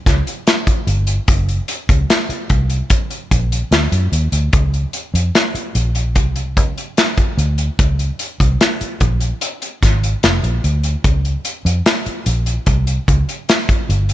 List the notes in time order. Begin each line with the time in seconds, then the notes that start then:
0.06 C#2, kick, snare, closed hi-hat
0.27 closed hi-hat
0.47 snare, closed hi-hat
0.67 kick, closed hi-hat
0.87 G1, closed hi-hat
1.07 closed hi-hat
1.28 F#1, kick, closed hi-hat
1.49 closed hi-hat
1.68 closed hi-hat
1.89 C#2, kick, closed hi-hat
2.10 snare, closed hi-hat
2.29 muted fingered electric bass stroke, closed hi-hat
2.50 C2, kick, closed hi-hat
2.70 closed hi-hat
2.90 kick, closed hi-hat
3.10 closed hi-hat
3.31 A#1, kick, closed hi-hat
3.52 closed hi-hat
3.71 D2, snare, closed hi-hat
3.92 F#2, closed hi-hat
4.12 D#2, closed hi-hat
4.32 D2, closed hi-hat
4.53 C#2, kick, closed hi-hat
4.74 closed hi-hat
4.93 closed hi-hat
5.14 F2, closed hi-hat
5.35 snare, closed hi-hat
5.54 muted fingered electric bass stroke, closed hi-hat
5.75 A#1, closed hi-hat
5.95 closed hi-hat
6.16 C2, kick, closed hi-hat
6.36 closed hi-hat
6.57 C#2, kick, closed hi-hat
6.78 closed hi-hat
6.97 snare, closed hi-hat
7.17 kick, closed hi-hat
7.38 D2, closed hi-hat
7.58 closed hi-hat
7.79 C#2, kick, closed hi-hat
7.99 closed hi-hat
8.19 closed hi-hat
8.40 C2, kick, closed hi-hat
8.61 snare, closed hi-hat
8.81 muted fingered electric bass stroke, closed hi-hat
9.00 A#1, kick, closed hi-hat
9.21 closed hi-hat
9.41 closed hi-hat
9.62 closed hi-hat
9.83 G#1, kick, snare, closed hi-hat
10.04 closed hi-hat
10.23 F1, snare, closed hi-hat
10.43 A#1, closed hi-hat
10.64 D2, closed hi-hat
10.84 closed hi-hat
11.04 C#2, kick, closed hi-hat
11.25 closed hi-hat
11.45 closed hi-hat
11.65 F2, closed hi-hat
11.86 snare, closed hi-hat
12.06 muted fingered electric bass stroke, closed hi-hat
12.26 A#1, closed hi-hat
12.46 closed hi-hat
12.66 C2, kick, closed hi-hat
12.87 closed hi-hat
13.08 C#2, kick, closed hi-hat
13.29 closed hi-hat
13.49 snare, closed hi-hat
13.69 kick, closed hi-hat
13.89 G1, closed hi-hat
14.09 closed hi-hat